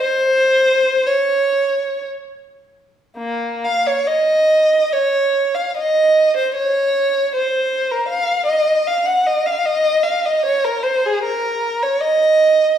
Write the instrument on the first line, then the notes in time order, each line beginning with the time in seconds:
violin
0.02 C5
1.06 C#5
3.17 A#3
3.64 F5
3.87 C#5
4.07 D#5
4.93 C#5
5.55 F5
5.77 D#5
6.37 C5
6.55 C#5
7.35 C5
7.91 A#4
8.09 F5
8.46 D#5
8.87 F5
9.06 F#5
9.27 D#5
9.46 F5
9.66 D#5
10.03 F5
10.26 D#5
10.46 C#5
10.64 A#4
10.83 C5
11.06 G#4
11.24 A#4
11.83 C#5
12.01 D#5